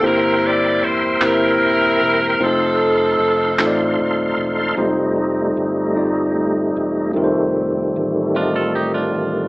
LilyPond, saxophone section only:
\new Staff \with { instrumentName = "Saxophone section" } { \time 6/8 \key f \mixolydian \tempo 4. = 51 << { bes'8 d''8 c''8 bes'4. | a'2 r4 | r2. | r2. | } \\ { e'4. e'4. | <c' ees'>2 r4 | r2. | r2. | } >> }